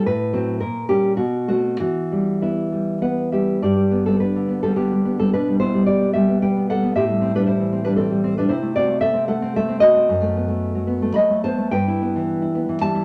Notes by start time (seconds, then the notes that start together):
0.06 A2 B4
0.33 F#3 C4
0.60 A#2 A#4
0.89 G3 C#4 G4
1.17 B2 F#4
1.48 A3 C4 F#4
1.80 E3 F#4
2.12 G3
2.42 B3 E4
2.72 G3
3.02 B3 B4 F#5
3.32 G3 G4 E5
3.62 G2 G4 D5
3.76 G3
3.91 B3
4.06 G3 C4 A4
4.20 D4 B4
4.36 D3
4.48 B3
4.63 G3 C4 A4
4.76 D3 B3 G4
4.91 G3
5.05 B3
5.19 G3 C4 A4
5.33 B2 D4 B4
5.48 G3
5.60 B3 E4 C5
5.74 G3
5.86 G4 D5
6.03 B3
6.13 G3 G4 E5
6.29 B3
6.42 G3 B4 G5
6.57 B3
6.70 G3 A4 F#5
6.83 B3
6.95 A2 G4 E5
7.09 G3
7.21 C4
7.35 G3 D4 B4
7.46 E4 C5
7.60 E3
7.72 C4
7.84 G3 D4 B4
7.96 E3 C4 A4
8.10 G3
8.24 C4
8.37 G3 D4 B4
8.49 C3 E4 C5
8.62 A3
8.75 C4 F#4 D5
8.87 A3
9.01 A4 E5
9.14 C4
9.28 A3 A4 F#5
9.42 C4
9.56 A3 A4 E5
9.69 C4
9.80 A3 F#4 D#5
9.95 C4
10.09 F#2
10.22 A3
10.36 B3
10.48 A3
10.75 F#3
10.87 B3
11.02 A3
11.14 F#3 D#5 B5
11.30 A3
11.44 B3 C5 A5
11.58 A3
11.71 G2 B4 G5
11.88 E4
12.02 B3
12.16 E3
12.42 E4
12.55 B3
12.69 E3
12.81 G3 E5 A5
12.95 E4